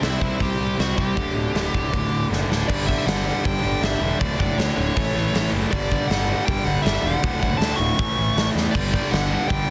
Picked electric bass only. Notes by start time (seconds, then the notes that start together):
0.01 C2
0.21 C2
0.41 C2
0.60 C2
0.79 C2
0.98 C2
1.17 D1
1.35 D1
1.54 D1
1.74 D1
1.94 D1
2.11 D1
2.30 F#1
2.49 D1
2.69 G1
3.07 G1
3.45 G1
3.64 G1
3.82 G1
4.01 E1
4.21 D1
4.40 F#1
4.58 D2
4.78 D1
4.96 A1
5.16 A1
5.35 A1
5.53 F#1
5.73 G1
6.10 G1
6.48 G1
6.66 G1
6.85 G1
7.04 E1
7.23 D1
7.43 F#1
7.61 D2
7.79 D1
7.99 A1
8.17 A1
8.36 A1
8.55 E2
8.75 G1
9.12 G1
9.50 G1